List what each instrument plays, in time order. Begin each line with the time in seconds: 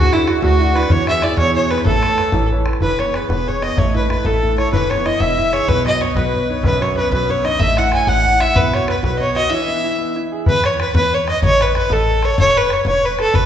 Already playing: grand piano D3, accordion F#4, fiddle F#4, harp F#4 G#4 B4 C#5 E5
0.04 bodhran
0.12 grand piano D4 E4 F#4, accordion E4, fiddle E4, harp E4, bodhran
0.27 grand piano D4 E4 F#4, fiddle F#4, accordion F#4, harp F#4, bodhran
0.35 bodhran
0.42 fm bass D2, grand piano A3, fiddle F#4, accordion F#4, harp F#4, bodhran
0.60 grand piano D4 E4 F#4
0.74 grand piano D4 E4 F#4, accordion B4, harp B4, fiddle B4, bodhran
0.83 bodhran
0.89 fm bass E2, grand piano E3, accordion C#5, harp C#5, fiddle C#5, bodhran
0.99 bodhran
1.07 grand piano B3 E4 G#4, accordion E5, harp E5, fiddle E5, bodhran
1.22 grand piano B3 E4 G#4, accordion D5, fiddle D5, harp D5, bodhran
1.30 bodhran
1.36 fm bass E2, grand piano B2, accordion C#5, fiddle C#5, harp C#5, bodhran
1.54 grand piano B3 E4 G#4, accordion C#5, fiddle C#5, harp C#5
1.70 grand piano B3 E4 G#4, accordion B4, fiddle B4, harp B4, bodhran
1.78 bodhran
1.85 fm bass A1, grand piano A3, accordion A4, fiddle A4, harp A4, bodhran
1.94 bodhran
2.03 grand piano A4 B4 C#5, bodhran
2.18 grand piano A4 B4 C#5, bodhran
2.25 bodhran
2.32 fm bass A1, grand piano E3, bodhran
2.51 grand piano A4 B4 C#5
2.66 grand piano A4 B4 C#5, bodhran
2.73 bodhran
2.80 fm bass E1, grand piano E3, harp B4, accordion B4, fiddle B4, bodhran
2.99 grand piano B3, accordion C#5, harp C#5, fiddle C#5, bodhran
3.14 grand piano G#4, accordion B4, harp B4, fiddle B4, bodhran
3.29 fm bass E1, grand piano B3, accordion B4, harp B4, fiddle B4, bodhran
3.47 grand piano G#4, harp C#5, accordion C#5, fiddle C#5, bodhran
3.62 grand piano B3, accordion D#5, fiddle D#5, harp D#5, bodhran
3.77 fm bass A1, grand piano A3, accordion C#5, harp C#5, fiddle C#5, bodhran
3.94 grand piano E4, accordion B4, harp B4, fiddle B4
4.09 grand piano A3, accordion B4, harp B4, fiddle B4, bodhran
4.25 fm bass A1, grand piano E4, accordion A4, fiddle A4, harp A4, bodhran
4.43 grand piano A3, bodhran
4.58 grand piano E4, harp C#5, fiddle C#5, bodhran
4.72 fm bass E1, grand piano E3, accordion B4, fiddle B4, harp B4, bodhran
4.90 grand piano B3, fiddle C#5, accordion C#5, bodhran
5.05 grand piano E4, fiddle D#5, accordion D#5, harp D#5, bodhran
5.19 fm bass E1, grand piano B3, fiddle E5, harp E5, accordion E5, bodhran
5.38 grand piano E4, bodhran
5.52 grand piano G#4, fiddle C#5, harp C#5, bodhran
5.68 fm bass B1, grand piano B2, harp B4, fiddle B4, accordion B4, bodhran
5.85 grand piano F#3, harp D#5, fiddle D#5, accordion D#5, bodhran
6.01 grand piano B3, fiddle C#5, harp C#5, bodhran
6.15 fm bass B1, grand piano F#3, fiddle B4, harp B4, accordion B4, bodhran
6.34 grand piano B3, bodhran
6.49 grand piano D#4, accordion C#5
6.63 fm bass B1, grand piano F#2, fiddle B4, harp B4, accordion B4, bodhran
6.81 grand piano F#3, harp C#5, accordion C#5, fiddle C#5, bodhran
6.96 grand piano B3, accordion B4, harp B4, fiddle B4
7.11 fm bass B1, grand piano F#3, harp B4, accordion B4, fiddle B4, bodhran
7.29 grand piano B3, accordion C#5, harp C#5, fiddle C#5, bodhran
7.44 grand piano D#4, accordion D#5, harp D#5, fiddle D#5, bodhran
7.59 fm bass A1, grand piano A3, fiddle E5, harp E5, accordion E5, bodhran
7.77 grand piano E4, fiddle F#5, harp F#5, accordion F#5, bodhran
7.92 grand piano C#5, fiddle G#5, harp G#5, bodhran
8.07 fm bass A1, grand piano E4, harp F#5, fiddle F#5, accordion F#5, bodhran
8.25 grand piano C#5, bodhran
8.40 grand piano E4, fiddle E5, harp E5, bodhran
8.55 fm bass B1, grand piano B3, fiddle B4, harp B4, accordion B4, bodhran
8.73 grand piano F#4, fiddle C#5, accordion C#5, bodhran
8.88 grand piano B3, fiddle B4, harp B4, accordion B4, bodhran
9.03 fm bass B1, grand piano F#4, fiddle B4, harp B4, accordion B4, bodhran
9.17 grand piano B3, fiddle C#5 D#5
9.22 harp C#5, accordion C#5
9.35 grand piano F#4, fiddle D#5, harp D#5, accordion D#5, bodhran
9.50 grand piano E3, fiddle E5, harp E5, accordion E5
9.68 grand piano B3
9.83 grand piano E4
9.98 grand piano B3
10.16 grand piano E4
10.32 grand piano G#4
10.46 fm bass E2, accordion B4, harp B4, fiddle B4, bodhran
10.64 harp C#5, accordion C#5, fiddle C#5, bodhran
10.80 harp B4, fiddle B4, accordion B4, bodhran
10.94 fm bass E2, harp B4, fiddle B4, accordion B4, bodhran
11.12 harp C#5, accordion C#5, fiddle C#5, bodhran
11.28 harp D#5, fiddle D#5, accordion D#5, bodhran
11.42 fm bass A1, accordion C#5, harp C#5, fiddle C#5, bodhran
11.61 harp B4, accordion B4, fiddle B4, bodhran
11.75 harp B4, accordion B4, fiddle B4, bodhran
11.90 fm bass A1, harp A4, fiddle A4, accordion A4, bodhran
12.07 bodhran
12.22 harp C#5, fiddle C#5, bodhran
12.38 fm bass E1, harp C#5, accordion C#5, fiddle C#5, bodhran
12.57 harp B4, accordion B4, fiddle B4
12.70 accordion C#5, harp C#5, fiddle C#5, bodhran
12.85 fm bass E1, accordion C#5, fiddle C#5, harp C#5, bodhran
13.03 accordion B4, fiddle B4, bodhran
13.19 harp A4, fiddle A4, bodhran
13.34 fm bass G#1, accordion B4, harp B4, fiddle B4, bodhran